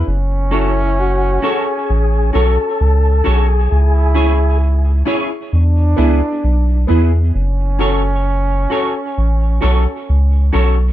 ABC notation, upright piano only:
X:1
M:4/4
L:1/16
Q:"Swing 16ths" 1/4=66
K:F#m
V:1 name="Upright piano"
z2 [CFA] z3 [CFA] z3 [CFA] [FA] z2 [CFA] z | z2 [CEG] z3 [CEG] z3 [B,EG] [EG] z2 [B,EG] z | z2 [CFA] z3 [CFA] z3 [CFA] [FA] z2 [CFA] z |]